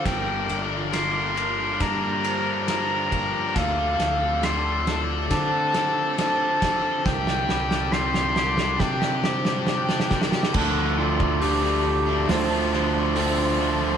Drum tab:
CC |--------------------------------|--------------------------------|--------------------------------|x-------------------------------|
RD |x---x---x---x---x---x---x---x---|x---x---x---x---x---x---x---x---|--------------------------------|--------------------------------|
HH |--------------------------------|--------------------------------|--------------------------------|--------o-------o-------o-------|
SD |o-------o-------o-------o-------|o---o---o---o---o---o---o---o---|o-o-o-o-o-o-o-o-o-o-o-o-o-oooooo|----------------o---o-----------|
BD |o---------------o-----------o---|o---------------o-----------o---|o---------------o-----------o---|o-----o-------------------------|